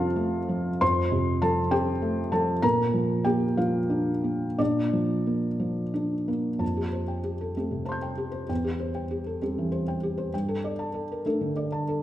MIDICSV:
0, 0, Header, 1, 2, 480
1, 0, Start_track
1, 0, Key_signature, -1, "major"
1, 0, Tempo, 618557
1, 628, Time_signature, 6, 3, 24, 8
1, 2529, Tempo, 671141
1, 4929, Tempo, 636267
1, 5409, Tempo, 614754
1, 8289, Tempo, 634249
1, 9111, End_track
2, 0, Start_track
2, 0, Title_t, "Felt piano"
2, 0, Program_c, 0, 0
2, 0, Control_c, 0, 64, 127
2, 0, Note_on_c, 0, 41, 58
2, 0, Note_on_c, 0, 48, 46
2, 0, Note_on_c, 0, 53, 49
2, 0, Note_on_c, 0, 60, 49
2, 0, Note_on_c, 0, 65, 60
2, 0, Note_on_c, 0, 69, 62
2, 0, Note_on_c, 0, 72, 71
2, 0, Note_on_c, 0, 77, 76
2, 0, Note_on_c, 0, 81, 81
2, 0, Note_on_c, 0, 84, 89
2, 125, Note_on_c, 0, 57, 50
2, 284, Note_off_c, 0, 60, 0
2, 379, Note_off_c, 0, 53, 0
2, 379, Note_on_c, 0, 53, 49
2, 527, Note_off_c, 0, 57, 0
2, 596, Note_off_c, 0, 41, 0
2, 600, Note_off_c, 0, 65, 0
2, 626, Note_off_c, 0, 77, 0
2, 629, Note_off_c, 0, 84, 0
2, 629, Note_on_c, 0, 84, 95
2, 631, Note_on_c, 0, 41, 64
2, 632, Note_off_c, 0, 72, 0
2, 632, Note_on_c, 0, 72, 71
2, 643, Control_c, 0, 64, 0
2, 645, Note_off_c, 0, 81, 0
2, 647, Note_off_c, 0, 48, 0
2, 650, Note_off_c, 0, 69, 0
2, 770, Note_off_c, 0, 53, 0
2, 773, Control_c, 0, 64, 127
2, 867, Note_on_c, 0, 48, 51
2, 1072, Note_off_c, 0, 72, 0
2, 1100, Note_on_c, 0, 81, 83
2, 1101, Note_on_c, 0, 53, 50
2, 1102, Note_off_c, 0, 84, 0
2, 1106, Note_on_c, 0, 69, 67
2, 1242, Note_off_c, 0, 48, 0
2, 1321, Note_off_c, 0, 69, 0
2, 1327, Note_on_c, 0, 60, 51
2, 1329, Note_on_c, 0, 79, 89
2, 1335, Note_off_c, 0, 81, 0
2, 1336, Note_on_c, 0, 67, 63
2, 1476, Note_off_c, 0, 53, 0
2, 1567, Note_on_c, 0, 57, 53
2, 1707, Note_off_c, 0, 60, 0
2, 1774, Note_off_c, 0, 67, 0
2, 1799, Note_on_c, 0, 81, 74
2, 1802, Note_off_c, 0, 79, 0
2, 1804, Note_on_c, 0, 53, 50
2, 1809, Note_on_c, 0, 69, 57
2, 1945, Note_off_c, 0, 57, 0
2, 2012, Note_off_c, 0, 41, 0
2, 2027, Note_off_c, 0, 69, 0
2, 2037, Note_on_c, 0, 82, 88
2, 2039, Note_off_c, 0, 81, 0
2, 2041, Note_off_c, 0, 53, 0
2, 2042, Note_on_c, 0, 46, 64
2, 2047, Note_on_c, 0, 70, 69
2, 2056, Control_c, 0, 64, 0
2, 2173, Control_c, 0, 64, 127
2, 2278, Note_on_c, 0, 53, 46
2, 2500, Note_off_c, 0, 70, 0
2, 2518, Note_on_c, 0, 79, 77
2, 2523, Note_on_c, 0, 58, 48
2, 2526, Note_off_c, 0, 82, 0
2, 2528, Note_on_c, 0, 67, 57
2, 2665, Note_off_c, 0, 53, 0
2, 2743, Note_off_c, 0, 67, 0
2, 2754, Note_on_c, 0, 77, 61
2, 2755, Note_off_c, 0, 79, 0
2, 2756, Note_on_c, 0, 53, 46
2, 2760, Note_on_c, 0, 65, 47
2, 2898, Note_off_c, 0, 58, 0
2, 2985, Note_on_c, 0, 62, 47
2, 3138, Note_off_c, 0, 53, 0
2, 3230, Note_on_c, 0, 58, 40
2, 3379, Note_off_c, 0, 62, 0
2, 3454, Note_off_c, 0, 46, 0
2, 3454, Note_off_c, 0, 65, 0
2, 3477, Note_on_c, 0, 74, 69
2, 3480, Note_off_c, 0, 77, 0
2, 3480, Note_on_c, 0, 46, 52
2, 3487, Note_on_c, 0, 62, 49
2, 3496, Control_c, 0, 64, 0
2, 3612, Control_c, 0, 64, 127
2, 3627, Note_off_c, 0, 58, 0
2, 3723, Note_on_c, 0, 53, 39
2, 3965, Note_on_c, 0, 58, 41
2, 4110, Note_off_c, 0, 53, 0
2, 4200, Note_on_c, 0, 53, 37
2, 4351, Note_off_c, 0, 58, 0
2, 4434, Note_off_c, 0, 62, 0
2, 4445, Note_on_c, 0, 62, 42
2, 4591, Note_off_c, 0, 53, 0
2, 4689, Note_on_c, 0, 58, 41
2, 4690, Note_off_c, 0, 74, 0
2, 4834, Note_off_c, 0, 62, 0
2, 4899, Note_off_c, 0, 46, 0
2, 4913, Note_on_c, 0, 41, 37
2, 4913, Note_on_c, 0, 81, 35
2, 4927, Note_off_c, 0, 58, 0
2, 4944, Control_c, 0, 64, 0
2, 5044, Note_on_c, 0, 67, 32
2, 5064, Control_c, 0, 64, 127
2, 5113, Note_off_c, 0, 81, 0
2, 5162, Note_on_c, 0, 72, 35
2, 5239, Note_off_c, 0, 67, 0
2, 5280, Note_on_c, 0, 79, 36
2, 5357, Note_off_c, 0, 72, 0
2, 5400, Note_on_c, 0, 67, 31
2, 5476, Note_off_c, 0, 79, 0
2, 5532, Note_on_c, 0, 69, 30
2, 5600, Note_off_c, 0, 67, 0
2, 5621, Note_off_c, 0, 41, 0
2, 5653, Note_off_c, 0, 69, 0
2, 5655, Note_on_c, 0, 57, 30
2, 5659, Note_on_c, 0, 60, 28
2, 5659, Note_on_c, 0, 67, 31
2, 5768, Note_on_c, 0, 48, 31
2, 5851, Note_off_c, 0, 67, 0
2, 5879, Note_on_c, 0, 72, 34
2, 5881, Note_on_c, 0, 81, 27
2, 5906, Note_on_c, 0, 84, 27
2, 5929, Note_on_c, 0, 91, 28
2, 5968, Note_off_c, 0, 48, 0
2, 6012, Note_on_c, 0, 79, 37
2, 6084, Note_off_c, 0, 72, 0
2, 6132, Note_on_c, 0, 67, 33
2, 6210, Note_off_c, 0, 79, 0
2, 6242, Note_on_c, 0, 72, 35
2, 6330, Note_off_c, 0, 67, 0
2, 6343, Note_off_c, 0, 81, 0
2, 6353, Note_off_c, 0, 57, 0
2, 6355, Note_off_c, 0, 60, 0
2, 6356, Note_off_c, 0, 84, 0
2, 6367, Note_off_c, 0, 91, 0
2, 6372, Note_off_c, 0, 72, 0
2, 6377, Note_on_c, 0, 40, 46
2, 6379, Note_on_c, 0, 79, 39
2, 6398, Control_c, 0, 64, 0
2, 6496, Note_on_c, 0, 67, 37
2, 6503, Control_c, 0, 64, 127
2, 6573, Note_off_c, 0, 79, 0
2, 6615, Note_on_c, 0, 72, 37
2, 6691, Note_off_c, 0, 67, 0
2, 6733, Note_on_c, 0, 79, 41
2, 6811, Note_off_c, 0, 72, 0
2, 6859, Note_on_c, 0, 67, 38
2, 6930, Note_off_c, 0, 79, 0
2, 6980, Note_on_c, 0, 69, 33
2, 7052, Note_off_c, 0, 67, 0
2, 7076, Note_off_c, 0, 40, 0
2, 7100, Note_off_c, 0, 69, 0
2, 7101, Note_on_c, 0, 55, 35
2, 7103, Note_on_c, 0, 67, 38
2, 7108, Note_on_c, 0, 60, 33
2, 7230, Note_on_c, 0, 52, 39
2, 7291, Note_off_c, 0, 67, 0
2, 7335, Note_on_c, 0, 72, 41
2, 7413, Note_off_c, 0, 52, 0
2, 7462, Note_on_c, 0, 79, 42
2, 7525, Note_off_c, 0, 72, 0
2, 7580, Note_on_c, 0, 67, 40
2, 7648, Note_off_c, 0, 79, 0
2, 7693, Note_on_c, 0, 72, 40
2, 7767, Note_off_c, 0, 67, 0
2, 7780, Note_off_c, 0, 55, 0
2, 7783, Note_off_c, 0, 60, 0
2, 7811, Note_off_c, 0, 72, 0
2, 7818, Note_on_c, 0, 43, 52
2, 7820, Note_on_c, 0, 79, 48
2, 7824, Control_c, 0, 64, 0
2, 7934, Note_on_c, 0, 69, 44
2, 7968, Control_c, 0, 64, 127
2, 8006, Note_off_c, 0, 79, 0
2, 8058, Note_on_c, 0, 74, 43
2, 8122, Note_off_c, 0, 69, 0
2, 8172, Note_on_c, 0, 81, 46
2, 8244, Note_off_c, 0, 74, 0
2, 8288, Note_on_c, 0, 69, 44
2, 8360, Note_off_c, 0, 81, 0
2, 8423, Note_on_c, 0, 70, 38
2, 8475, Note_off_c, 0, 69, 0
2, 8505, Note_off_c, 0, 43, 0
2, 8530, Note_on_c, 0, 57, 39
2, 8531, Note_on_c, 0, 69, 44
2, 8532, Note_off_c, 0, 70, 0
2, 8536, Note_on_c, 0, 62, 38
2, 8645, Note_on_c, 0, 50, 44
2, 8717, Note_off_c, 0, 69, 0
2, 8762, Note_on_c, 0, 74, 42
2, 8835, Note_off_c, 0, 50, 0
2, 8881, Note_on_c, 0, 81, 48
2, 8956, Note_off_c, 0, 74, 0
2, 9004, Note_on_c, 0, 69, 40
2, 9078, Note_off_c, 0, 81, 0
2, 9111, Note_off_c, 0, 57, 0
2, 9111, Note_off_c, 0, 62, 0
2, 9111, Note_off_c, 0, 69, 0
2, 9111, End_track
0, 0, End_of_file